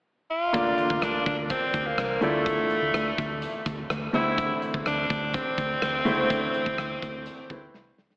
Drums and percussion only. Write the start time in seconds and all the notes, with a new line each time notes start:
0.54 kick, closed hi-hat
0.78 closed hi-hat
0.90 kick
1.02 cross-stick, closed hi-hat
1.26 kick, closed hi-hat
1.50 kick, closed hi-hat
1.74 kick, closed hi-hat
1.98 cross-stick, closed hi-hat
2.22 closed hi-hat
2.46 kick, closed hi-hat
2.70 closed hi-hat
2.94 cross-stick, closed hi-hat
3.18 kick, closed hi-hat
3.42 closed hi-hat
3.66 kick, closed hi-hat
3.90 cross-stick, closed hi-hat
4.14 closed hi-hat
4.38 kick, closed hi-hat
4.62 closed hi-hat
4.74 kick
4.86 cross-stick, closed hi-hat
5.10 kick, closed hi-hat
5.34 kick, closed hi-hat
5.58 kick, closed hi-hat
5.82 cross-stick, closed hi-hat
6.06 closed hi-hat
6.30 kick, closed hi-hat
6.54 closed hi-hat
6.66 kick
6.78 cross-stick, closed hi-hat
7.02 kick, closed hi-hat
7.26 closed hi-hat
7.50 kick, closed hi-hat
7.74 snare
7.98 snare
8.10 snare